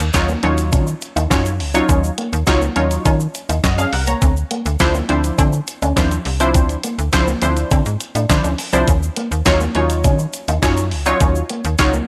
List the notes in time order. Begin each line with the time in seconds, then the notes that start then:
0.00 D#2, closed hi-hat, shaker
0.14 D#2 F#3 D#4 F4 C#5, muted clean electric guitar stroke, kick, snare, clap, closed hi-hat, shaker
0.28 A#3, shaker
0.43 D#2 F#3 C#4 D#4 F4 C#5, closed hi-hat
0.58 closed hi-hat, shaker
0.72 D#3 C#4, kick, closed hi-hat, shaker
0.87 muted clean electric guitar stroke, shaker
1.01 closed hi-hat, shaker
1.16 D#2 D#4, closed hi-hat, shaker
1.30 F#2 F#3 C#4 D#4 F4 C#5, kick, snare, clap, closed hi-hat, shaker
1.45 muted clean electric guitar stroke, closed hi-hat, shaker
1.60 C#2, open hi-hat
1.74 F#3 C#4 D#4 F4 C#5, closed hi-hat, shaker
1.89 D#2 C#4, kick, closed hi-hat, shaker
2.04 shaker
2.18 A#3, closed hi-hat
2.33 D#2, muted clean electric guitar stroke, closed hi-hat, shaker
2.47 C#2 F#3 D#4 F4 C#5, muted clean electric guitar stroke, kick, snare, clap, closed hi-hat, shaker
2.62 A#3, shaker
2.76 D#2 F#3 C#4 D#4 F4 C#5, closed hi-hat
2.91 closed hi-hat, shaker
3.05 D#3 C#4, kick, closed hi-hat, shaker
3.20 muted clean electric guitar stroke, shaker
3.34 closed hi-hat, shaker
3.49 D#2 D#4, closed hi-hat, shaker
3.64 F#2 F#4 D#5, kick, snare, clap, closed hi-hat, shaker
3.78 C#4 G#4 F5, closed hi-hat, shaker
3.93 C2 A#4 F#5, muted clean electric guitar stroke, open hi-hat
4.07 A#3 C#5 A#5, closed hi-hat, shaker
4.22 D2 C4, kick, closed hi-hat, shaker
4.37 shaker
4.51 A#3, closed hi-hat
4.66 D2, muted clean electric guitar stroke, closed hi-hat, shaker
4.79 D2 F3 D4 E4 C5, muted clean electric guitar stroke, kick, snare, clap, closed hi-hat, shaker
4.94 A#3, shaker
5.09 D2 F3 C4 D4 E4 C5, closed hi-hat
5.24 closed hi-hat, shaker
5.38 D3 C4, kick, closed hi-hat, shaker
5.53 muted clean electric guitar stroke, shaker
5.67 closed hi-hat, shaker
5.82 D2 C#4, closed hi-hat, shaker
5.96 D#2 F3 C4 D4 E4 C5, kick, snare, clap, closed hi-hat, shaker
6.11 muted clean electric guitar stroke, closed hi-hat, shaker
6.25 C2, open hi-hat
6.40 F3 C4 D4 E4 C5, closed hi-hat, shaker
6.54 D2 C4, kick, closed hi-hat, shaker
6.69 closed hi-hat, shaker
6.83 A#3, closed hi-hat, shaker
6.98 D2, muted clean electric guitar stroke, closed hi-hat, shaker
7.13 C#2 F3 D4 E4 C5, muted clean electric guitar stroke, kick, snare, clap, closed hi-hat, shaker
7.27 A#3, shaker
7.42 D2 F3 C4 D4 E4 C5, closed hi-hat, shaker
7.57 closed hi-hat, shaker
7.71 D3 C4, kick, closed hi-hat, shaker
7.86 G#2, muted clean electric guitar stroke, closed hi-hat, shaker
8.00 closed hi-hat, shaker
8.15 A2 D4, closed hi-hat, shaker
8.29 D3 F3 D4 E4 C5, kick, snare, clap, closed hi-hat, shaker
8.44 D2 C#4, closed hi-hat, shaker
8.58 muted clean electric guitar stroke, open hi-hat, shaker
8.73 C2 F3 C4 D4 E4 C5, closed hi-hat, shaker
8.88 D#2 C#4, kick, closed hi-hat, shaker
9.03 shaker
9.16 A#3, closed hi-hat
9.31 D#2, muted clean electric guitar stroke, closed hi-hat, shaker
9.45 D#2 F#3 D#4 F4 C#5, muted clean electric guitar stroke, kick, snare, clap, closed hi-hat, shaker
9.60 A#3, shaker
9.75 D#2 F#3 C#4 D#4 F4 C#5, closed hi-hat
9.90 closed hi-hat, shaker
10.04 D#3 C#4, kick, closed hi-hat, shaker
10.19 muted clean electric guitar stroke, shaker
10.33 closed hi-hat, shaker
10.48 D#2 D#4, closed hi-hat, shaker
10.62 F#2 F#3 C#4 D#4 F4 C#5, kick, snare, clap, closed hi-hat, shaker
10.77 muted clean electric guitar stroke, closed hi-hat, shaker
10.91 C#2, open hi-hat
11.06 F#3 C#4 D#4 F4 C#5, closed hi-hat, shaker
11.20 D#2 C#4, kick, closed hi-hat, shaker
11.35 shaker
11.49 A#3, closed hi-hat
11.64 D#2, muted clean electric guitar stroke, closed hi-hat, shaker
11.78 C#2 F#3 D#4 F4 C#5, muted clean electric guitar stroke, kick, snare, clap, closed hi-hat, shaker
11.93 A#3, shaker